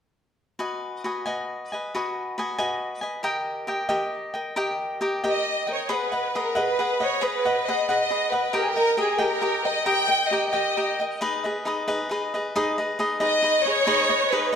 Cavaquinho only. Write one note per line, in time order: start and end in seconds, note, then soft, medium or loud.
0.59 1.03 F#4 soft
0.59 1.03 B4 soft
0.59 1.04 D#5 soft
0.59 1.04 G#5 medium
1.04 1.26 F#4 soft
1.04 1.26 B4 soft
1.04 1.25 D#5 soft
1.04 1.24 G#5 soft
1.26 1.72 F#4 soft
1.26 1.72 B4 soft
1.26 1.73 D#5 soft
1.26 1.71 G#5 medium
1.72 1.94 B4 soft
1.72 1.95 D#5 soft
1.72 1.94 G#5 soft
1.95 2.37 F#4 medium
1.95 2.37 B4 medium
1.95 2.38 D#5 medium
1.95 2.38 G#5 medium
2.38 2.59 F#4 soft
2.38 2.58 B4 soft
2.38 2.57 D#5 soft
2.38 2.57 G#5 soft
2.58 3.02 F#4 soft
2.58 3.02 B4 soft
2.58 3.03 D#5 soft
2.58 3.00 G#5 medium
3.01 3.23 B4 soft
3.01 3.23 D#5 soft
3.01 3.24 G#5 soft
3.23 3.66 G4 medium
3.23 3.67 A#4 medium
3.23 3.68 D#5 medium
3.23 3.67 G5 medium
3.67 3.88 G4 soft
3.67 3.88 A#4 soft
3.67 3.87 D#5 soft
3.67 3.88 G5 medium
3.89 4.34 G4 medium
3.89 4.34 A#4 soft
3.89 4.35 D#5 soft
3.89 4.32 G5 medium
4.34 4.55 A#4 soft
4.34 4.56 D#5 soft
4.34 4.56 G5 soft
4.56 5.00 G4 medium
4.56 5.00 A#4 medium
4.56 5.01 D#5 medium
4.56 5.01 G5 medium
5.01 5.23 G4 soft
5.01 5.23 A#4 medium
5.01 5.23 D#5 medium
5.01 5.22 G5 medium
5.24 5.67 G4 soft
5.24 5.67 A#4 soft
5.24 5.67 D#5 medium
5.24 5.66 G5 soft
5.67 5.88 A#4 soft
5.67 5.88 D#5 soft
5.67 5.90 G5 soft
5.89 6.13 G#4 medium
5.89 6.12 B4 medium
5.89 6.11 D#5 medium
5.89 6.11 F#5 medium
6.12 6.35 B4 soft
6.12 6.35 D#5 soft
6.12 6.35 F#5 soft
6.35 6.56 G#4 soft
6.35 6.55 B4 soft
6.35 6.55 D#5 soft
6.35 6.54 F#5 soft
6.55 6.78 G#4 soft
6.55 6.78 B4 soft
6.55 6.78 D#5 medium
6.55 6.79 F#5 soft
6.79 7.02 G#4 soft
6.79 7.01 B4 soft
6.79 6.99 D#5 soft
6.79 6.99 F#5 soft
7.00 7.21 B4 soft
7.00 7.21 D#5 soft
7.00 7.22 F#5 soft
7.21 7.45 G#4 medium
7.21 7.46 B4 medium
7.21 7.45 D#5 medium
7.21 7.44 F#5 medium
7.45 7.68 B4 soft
7.45 7.68 D#5 soft
7.45 7.68 F#5 soft
7.68 7.89 G#4 soft
7.68 7.89 B4 medium
7.68 7.88 D#5 soft
7.68 7.88 F#5 soft
7.89 8.09 G#4 soft
7.89 8.10 B4 soft
7.89 8.10 D#5 soft
7.89 8.11 F#5 medium
8.10 8.33 G#4 soft
8.10 8.32 B4 soft
8.10 8.32 D#5 soft
8.10 8.31 F#5 soft
8.32 8.53 B4 soft
8.32 8.52 D#5 soft
8.32 8.54 F#5 soft
8.53 8.76 G4 medium
8.53 8.76 A#4 medium
8.53 8.75 D#5 medium
8.53 8.75 G5 medium
8.76 8.96 A#4 soft
8.76 8.97 D#5 soft
8.76 8.97 G5 soft
8.97 9.19 G4 soft
8.97 9.18 A#4 soft
8.97 9.18 D#5 medium
8.97 9.17 G5 medium
9.18 9.40 G4 soft
9.18 9.41 A#4 soft
9.18 9.41 D#5 soft
9.18 9.41 G5 medium
9.42 9.64 G4 soft
9.42 9.64 A#4 soft
9.42 9.64 D#5 soft
9.42 9.64 G5 medium
9.65 9.85 A#4 soft
9.65 9.85 D#5 soft
9.65 9.86 G5 soft
9.86 10.08 G4 medium
9.86 10.08 A#4 medium
9.86 10.07 D#5 medium
9.86 10.06 G5 medium
10.08 10.31 A#4 soft
10.08 10.31 D#5 soft
10.08 10.30 G5 soft
10.31 10.53 G4 soft
10.31 10.52 A#4 soft
10.31 10.52 D#5 medium
10.31 10.51 G5 medium
10.53 10.76 G4 soft
10.53 10.76 A#4 soft
10.53 10.76 D#5 soft
10.53 10.76 G5 soft
10.77 10.99 G4 soft
10.77 10.99 A#4 soft
10.77 10.99 D#5 soft
10.77 10.98 G5 soft
11.00 11.20 A#4 soft
11.00 11.20 D#5 soft
11.00 11.21 G5 soft
11.21 11.44 D#4 medium
11.21 11.45 G#4 medium
11.21 11.44 B4 medium
11.21 11.43 D#5 medium
11.44 11.65 G#4 soft
11.44 11.66 B4 soft
11.44 11.66 D#5 soft
11.65 11.88 D#4 soft
11.65 11.87 G#4 soft
11.65 11.86 B4 medium
11.65 11.87 D#5 medium
11.88 12.08 D#4 soft
11.88 12.10 G#4 medium
11.88 12.10 B4 medium
11.88 12.10 D#5 medium
12.09 12.33 D#4 soft
12.09 12.33 G#4 soft
12.09 12.34 B4 medium
12.09 12.33 D#5 medium
12.34 12.55 G#4 soft
12.34 12.55 B4 soft
12.34 12.55 D#5 soft
12.56 12.78 D#4 medium
12.56 12.78 G#4 medium
12.56 12.78 B4 medium
12.56 12.77 D#5 medium
12.78 12.98 G#4 soft
12.78 12.99 B4 soft
12.78 12.99 D#5 soft
12.99 13.20 D#4 medium
12.99 13.19 G#4 medium
12.99 13.20 B4 medium
12.99 13.19 D#5 medium
13.20 13.41 D#4 soft
13.20 13.42 G#4 soft
13.20 13.43 B4 soft
13.20 13.43 D#5 medium
13.42 13.65 D#4 soft
13.42 13.65 G#4 soft
13.42 13.65 B4 medium
13.42 13.64 D#5 soft
13.65 13.86 G#4 soft
13.65 13.86 B4 soft
13.65 13.86 D#5 soft
13.87 14.09 D#4 medium
13.87 14.09 G#4 medium
13.87 14.09 B4 medium
13.87 14.08 D#5 medium
14.09 14.31 G#4 soft
14.09 14.31 B4 soft
14.09 14.31 D#5 soft
14.32 14.53 D#4 soft
14.32 14.52 G#4 medium
14.32 14.52 B4 medium
14.32 14.51 D#5 medium